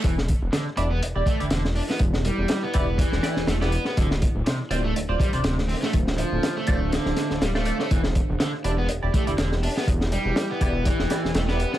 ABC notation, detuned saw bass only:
X:1
M:4/4
L:1/16
Q:"Swing 16ths" 1/4=122
K:Ephr
V:1 name="Detuned saw bass" clef=bass
E,,,2 z E,,, z2 E,,,2 E,,, E,,, z E,,, E,,,2 z2 | E,,,2 z E,,, z2 E,,,2 z E,,, z E,,, E,,,2 z2 | D,,,2 z D,,, z2 D,,,2 D,,, D,,, z D,,, D,,,2 z2 | D,,,2 z D,,, z2 D,,,2 z D,,, z D,,, D,,,2 z2 |
E,,,2 z E,,, z2 E,,,2 E,,, E,,, z E,,, E,,,2 z2 | E,,,2 z E,,, z2 E,,,2 z E,,, z E,,, E,,,2 z2 |]